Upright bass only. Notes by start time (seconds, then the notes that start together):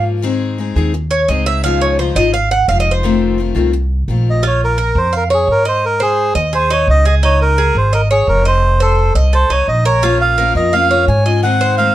Already playing: G#2
0.76 D#2
1.28 C#2
2.15 G#1
2.68 F1
3.56 C2
4.08 A#1
4.95 F2
5.47 G#2
6.35 D#2
6.87 C#2
7.75 G#1
8.27 F1
9.15 C2
9.50 C2
9.68 A#1
10.55 F2
11.08 G#2